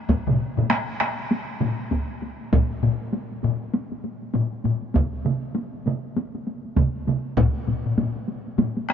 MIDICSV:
0, 0, Header, 1, 2, 480
1, 0, Start_track
1, 0, Tempo, 606061
1, 78, Time_signature, 4, 2, 24, 8
1, 7076, End_track
2, 0, Start_track
2, 0, Title_t, "Taiko and cinematic ensemble drums"
2, 70, Note_on_c, 9, 41, 90
2, 75, Note_on_c, 9, 48, 65
2, 149, Note_off_c, 9, 41, 0
2, 154, Note_off_c, 9, 48, 0
2, 215, Note_on_c, 9, 45, 92
2, 219, Note_on_c, 9, 47, 93
2, 220, Note_on_c, 9, 48, 20
2, 294, Note_off_c, 9, 45, 0
2, 299, Note_off_c, 9, 47, 0
2, 299, Note_off_c, 9, 48, 0
2, 454, Note_on_c, 9, 45, 89
2, 460, Note_on_c, 9, 48, 19
2, 463, Note_on_c, 9, 47, 90
2, 533, Note_off_c, 9, 45, 0
2, 539, Note_off_c, 9, 48, 0
2, 542, Note_off_c, 9, 47, 0
2, 553, Note_on_c, 9, 37, 71
2, 554, Note_off_c, 9, 37, 0
2, 554, Note_on_c, 9, 37, 72
2, 554, Note_on_c, 9, 48, 62
2, 633, Note_off_c, 9, 37, 0
2, 633, Note_off_c, 9, 48, 0
2, 698, Note_on_c, 9, 48, 21
2, 778, Note_off_c, 9, 48, 0
2, 792, Note_on_c, 9, 37, 71
2, 795, Note_off_c, 9, 37, 0
2, 795, Note_on_c, 9, 37, 68
2, 799, Note_on_c, 9, 48, 47
2, 874, Note_off_c, 9, 37, 0
2, 878, Note_off_c, 9, 48, 0
2, 941, Note_on_c, 9, 48, 18
2, 1020, Note_off_c, 9, 48, 0
2, 1036, Note_on_c, 9, 48, 67
2, 1115, Note_off_c, 9, 48, 0
2, 1271, Note_on_c, 9, 47, 89
2, 1276, Note_on_c, 9, 45, 93
2, 1277, Note_on_c, 9, 48, 46
2, 1350, Note_off_c, 9, 47, 0
2, 1355, Note_off_c, 9, 45, 0
2, 1356, Note_off_c, 9, 48, 0
2, 1421, Note_on_c, 9, 48, 20
2, 1500, Note_off_c, 9, 48, 0
2, 1514, Note_on_c, 9, 48, 62
2, 1518, Note_on_c, 9, 41, 70
2, 1593, Note_off_c, 9, 48, 0
2, 1598, Note_off_c, 9, 41, 0
2, 1662, Note_on_c, 9, 48, 20
2, 1742, Note_off_c, 9, 48, 0
2, 1760, Note_on_c, 9, 48, 49
2, 1839, Note_off_c, 9, 48, 0
2, 1907, Note_on_c, 9, 48, 20
2, 1986, Note_off_c, 9, 48, 0
2, 2000, Note_on_c, 9, 45, 87
2, 2001, Note_on_c, 9, 48, 68
2, 2002, Note_on_c, 9, 41, 96
2, 2079, Note_off_c, 9, 45, 0
2, 2081, Note_off_c, 9, 48, 0
2, 2082, Note_off_c, 9, 41, 0
2, 2144, Note_on_c, 9, 48, 19
2, 2224, Note_off_c, 9, 48, 0
2, 2240, Note_on_c, 9, 45, 97
2, 2243, Note_on_c, 9, 48, 46
2, 2319, Note_off_c, 9, 45, 0
2, 2322, Note_off_c, 9, 48, 0
2, 2387, Note_on_c, 9, 48, 20
2, 2466, Note_off_c, 9, 48, 0
2, 2480, Note_on_c, 9, 48, 61
2, 2560, Note_off_c, 9, 48, 0
2, 2626, Note_on_c, 9, 48, 21
2, 2705, Note_off_c, 9, 48, 0
2, 2718, Note_on_c, 9, 48, 48
2, 2725, Note_on_c, 9, 45, 94
2, 2797, Note_off_c, 9, 48, 0
2, 2805, Note_off_c, 9, 45, 0
2, 2861, Note_on_c, 9, 48, 19
2, 2940, Note_off_c, 9, 48, 0
2, 2959, Note_on_c, 9, 48, 67
2, 3038, Note_off_c, 9, 48, 0
2, 3103, Note_on_c, 9, 48, 44
2, 3182, Note_off_c, 9, 48, 0
2, 3199, Note_on_c, 9, 48, 49
2, 3278, Note_off_c, 9, 48, 0
2, 3343, Note_on_c, 9, 48, 21
2, 3422, Note_off_c, 9, 48, 0
2, 3435, Note_on_c, 9, 48, 62
2, 3445, Note_on_c, 9, 45, 89
2, 3514, Note_off_c, 9, 48, 0
2, 3524, Note_off_c, 9, 45, 0
2, 3580, Note_on_c, 9, 48, 21
2, 3659, Note_off_c, 9, 48, 0
2, 3676, Note_on_c, 9, 48, 48
2, 3685, Note_on_c, 9, 45, 91
2, 3755, Note_off_c, 9, 48, 0
2, 3764, Note_off_c, 9, 45, 0
2, 3819, Note_on_c, 9, 48, 20
2, 3898, Note_off_c, 9, 48, 0
2, 3914, Note_on_c, 9, 48, 64
2, 3923, Note_on_c, 9, 47, 93
2, 3925, Note_on_c, 9, 41, 89
2, 3993, Note_off_c, 9, 48, 0
2, 4003, Note_off_c, 9, 47, 0
2, 4005, Note_off_c, 9, 41, 0
2, 4063, Note_on_c, 9, 48, 21
2, 4142, Note_off_c, 9, 48, 0
2, 4156, Note_on_c, 9, 48, 51
2, 4163, Note_on_c, 9, 47, 90
2, 4235, Note_off_c, 9, 48, 0
2, 4242, Note_off_c, 9, 47, 0
2, 4302, Note_on_c, 9, 48, 20
2, 4381, Note_off_c, 9, 48, 0
2, 4393, Note_on_c, 9, 48, 65
2, 4472, Note_off_c, 9, 48, 0
2, 4546, Note_on_c, 9, 48, 20
2, 4625, Note_off_c, 9, 48, 0
2, 4640, Note_on_c, 9, 48, 51
2, 4647, Note_on_c, 9, 47, 88
2, 4719, Note_off_c, 9, 48, 0
2, 4726, Note_off_c, 9, 47, 0
2, 4784, Note_on_c, 9, 48, 20
2, 4864, Note_off_c, 9, 48, 0
2, 4883, Note_on_c, 9, 48, 67
2, 4962, Note_off_c, 9, 48, 0
2, 5027, Note_on_c, 9, 48, 44
2, 5106, Note_off_c, 9, 48, 0
2, 5123, Note_on_c, 9, 48, 47
2, 5202, Note_off_c, 9, 48, 0
2, 5263, Note_on_c, 9, 48, 22
2, 5342, Note_off_c, 9, 48, 0
2, 5358, Note_on_c, 9, 48, 68
2, 5359, Note_on_c, 9, 41, 83
2, 5368, Note_on_c, 9, 47, 91
2, 5437, Note_off_c, 9, 48, 0
2, 5439, Note_off_c, 9, 41, 0
2, 5447, Note_off_c, 9, 47, 0
2, 5508, Note_on_c, 9, 48, 20
2, 5588, Note_off_c, 9, 48, 0
2, 5601, Note_on_c, 9, 48, 50
2, 5604, Note_on_c, 9, 47, 94
2, 5681, Note_off_c, 9, 48, 0
2, 5683, Note_off_c, 9, 47, 0
2, 5750, Note_on_c, 9, 48, 20
2, 5829, Note_off_c, 9, 48, 0
2, 5839, Note_on_c, 9, 45, 92
2, 5841, Note_on_c, 9, 41, 114
2, 5847, Note_on_c, 9, 48, 68
2, 5919, Note_off_c, 9, 45, 0
2, 5920, Note_off_c, 9, 41, 0
2, 5927, Note_off_c, 9, 48, 0
2, 5986, Note_on_c, 9, 48, 21
2, 6065, Note_off_c, 9, 48, 0
2, 6079, Note_on_c, 9, 45, 68
2, 6080, Note_on_c, 9, 48, 48
2, 6158, Note_off_c, 9, 45, 0
2, 6159, Note_off_c, 9, 48, 0
2, 6224, Note_on_c, 9, 45, 64
2, 6224, Note_on_c, 9, 48, 21
2, 6304, Note_off_c, 9, 45, 0
2, 6304, Note_off_c, 9, 48, 0
2, 6317, Note_on_c, 9, 45, 90
2, 6318, Note_on_c, 9, 48, 68
2, 6396, Note_off_c, 9, 45, 0
2, 6397, Note_off_c, 9, 48, 0
2, 6462, Note_on_c, 9, 48, 21
2, 6542, Note_off_c, 9, 48, 0
2, 6560, Note_on_c, 9, 48, 52
2, 6639, Note_off_c, 9, 48, 0
2, 6704, Note_on_c, 9, 48, 20
2, 6783, Note_off_c, 9, 48, 0
2, 6796, Note_on_c, 9, 45, 82
2, 6798, Note_on_c, 9, 48, 73
2, 6875, Note_off_c, 9, 45, 0
2, 6878, Note_off_c, 9, 48, 0
2, 6944, Note_on_c, 9, 48, 47
2, 7023, Note_off_c, 9, 48, 0
2, 7038, Note_on_c, 9, 37, 69
2, 7046, Note_on_c, 9, 48, 51
2, 7076, Note_off_c, 9, 37, 0
2, 7076, Note_off_c, 9, 48, 0
2, 7076, End_track
0, 0, End_of_file